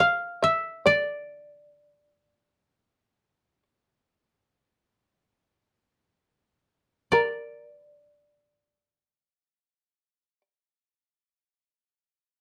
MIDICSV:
0, 0, Header, 1, 3, 480
1, 0, Start_track
1, 0, Tempo, 500000
1, 11910, End_track
2, 0, Start_track
2, 0, Title_t, "Koto"
2, 0, Program_c, 0, 107
2, 0, Note_on_c, 0, 70, 58
2, 0, Note_on_c, 0, 74, 60
2, 0, Note_on_c, 0, 77, 62
2, 419, Note_on_c, 0, 76, 56
2, 476, Note_off_c, 0, 77, 0
2, 596, Note_off_c, 0, 70, 0
2, 757, Note_off_c, 0, 74, 0
2, 830, Note_on_c, 0, 74, 60
2, 1852, Note_off_c, 0, 76, 0
2, 3485, Note_off_c, 0, 74, 0
2, 6833, Note_on_c, 0, 74, 45
2, 9982, Note_off_c, 0, 74, 0
2, 11910, End_track
3, 0, Start_track
3, 0, Title_t, "Shamisen"
3, 0, Program_c, 1, 106
3, 3, Note_on_c, 1, 77, 51
3, 389, Note_off_c, 1, 77, 0
3, 408, Note_on_c, 1, 76, 52
3, 798, Note_off_c, 1, 76, 0
3, 822, Note_on_c, 1, 74, 48
3, 3480, Note_off_c, 1, 74, 0
3, 6844, Note_on_c, 1, 70, 55
3, 7315, Note_off_c, 1, 70, 0
3, 7315, Note_on_c, 1, 71, 55
3, 7497, Note_off_c, 1, 71, 0
3, 7497, Note_on_c, 1, 72, 55
3, 7680, Note_off_c, 1, 72, 0
3, 7680, Note_on_c, 1, 73, 55
3, 7862, Note_off_c, 1, 73, 0
3, 7862, Note_on_c, 1, 74, 55
3, 9994, Note_off_c, 1, 74, 0
3, 11910, End_track
0, 0, End_of_file